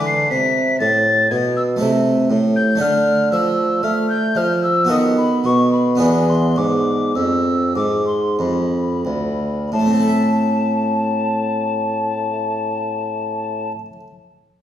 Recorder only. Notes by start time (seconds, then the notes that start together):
0.07 C7
0.30 B6
0.80 A6
1.30 G#6
1.56 E6
2.56 G6
2.81 F6
3.32 E6
3.83 F6
4.09 G6
4.37 F6
4.63 E6
4.90 D#6
5.17 B5
5.45 C#6
5.72 B5
6.00 B5
6.29 C6
6.57 D6
7.15 E6
7.76 D6
8.06 C6
8.39 B5
9.73 A5